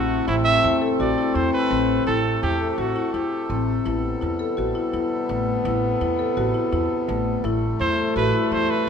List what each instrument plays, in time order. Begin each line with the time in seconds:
Already playing: upright bass A1, harmonium C3 A3 A4, marimba C4, french horn E4, trumpet F#4
0.28 upright bass A1, french horn C4, trumpet E4, marimba E4
0.44 trumpet E5
0.64 upright bass E2, marimba E4
0.82 marimba A4
1.00 upright bass A1, marimba F#4, trumpet D5
1.18 marimba E4
1.35 upright bass E2, marimba E4, trumpet C5
1.53 trumpet B4
1.71 upright bass A1, marimba C4
2.07 upright bass A1, marimba E4, trumpet A4
2.43 upright bass E2, marimba E4, trumpet G4
2.60 marimba A4
2.71 trumpet G4
2.78 upright bass A1, trumpet F#4, marimba F#4
2.96 marimba E4
3.13 upright bass E2, marimba E4, trumpet G4
3.50 upright bass A1, marimba C4
3.85 upright bass A1, harmonium G3, french horn B3, marimba E4
4.21 upright bass E2, marimba E4
4.39 marimba A4
4.57 upright bass A1, marimba F#4
4.75 marimba E4
4.93 upright bass E2, marimba E4
5.29 upright bass A1, marimba A3
5.65 upright bass A1, marimba E4
6.01 upright bass E2, marimba E4
6.19 marimba A4
6.37 upright bass A1, marimba F#4
6.54 marimba E4
6.72 upright bass E2, marimba E4
7.09 upright bass A1, marimba A3
7.44 upright bass A1, french horn A3, marimba E4
7.80 upright bass E2, marimba E4, trumpet C5
7.98 marimba A4
8.16 upright bass A1, marimba F#4, trumpet B4
8.34 marimba E4
8.52 upright bass E2, marimba E4, trumpet C5
8.70 trumpet B4